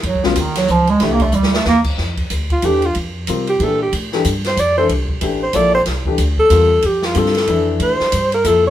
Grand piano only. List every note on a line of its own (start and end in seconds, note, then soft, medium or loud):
0.24 0.35 C#3 medium
0.24 0.35 F#3 medium
0.24 0.35 B3 medium
0.24 0.36 F4 medium
1.00 1.18 E3 medium
1.00 1.19 A3 medium
1.00 1.19 D4 medium
1.00 1.20 G4 medium
2.63 2.81 E3 medium
2.63 2.81 A3 medium
2.63 2.82 D4 medium
2.63 2.82 G4 medium
3.28 3.46 G3 medium
3.28 3.46 C4 medium
3.28 3.46 F4 medium
3.28 3.46 A#4 medium
3.61 3.78 E3 medium
3.61 3.79 A3 medium
3.61 3.79 D4 medium
3.61 3.80 G4 medium
4.13 4.24 E3 medium
4.13 4.24 A3 medium
4.13 4.25 D4 medium
4.13 4.25 G4 medium
4.78 4.88 E3 medium
4.78 4.89 A3 medium
4.78 4.89 D4 medium
4.78 4.89 A4 medium
5.21 5.39 E3 medium
5.21 5.40 A3 medium
5.21 5.40 D4 medium
5.21 5.40 G4 medium
5.54 5.72 F3 medium
5.54 5.72 A#3 medium
5.54 5.72 E4 medium
5.54 5.73 A4 medium
6.06 6.17 E3 medium
6.06 6.18 A3 medium
6.06 6.18 D4 medium
6.06 6.18 G4 medium
6.50 6.68 G3 medium
6.50 6.69 C4 medium
6.50 6.69 F4 medium
6.50 6.70 A#4 medium
7.15 7.33 D3 medium
7.15 7.33 G3 medium
7.15 7.34 C4 medium
7.15 7.34 F4 medium
7.47 7.96 E3 medium
7.47 7.96 A3 medium
7.47 7.96 D4 medium
7.47 7.97 E4 medium
8.44 8.62 F3 medium
8.44 8.63 A#3 medium
8.44 8.63 E4 medium
8.44 8.63 A4 medium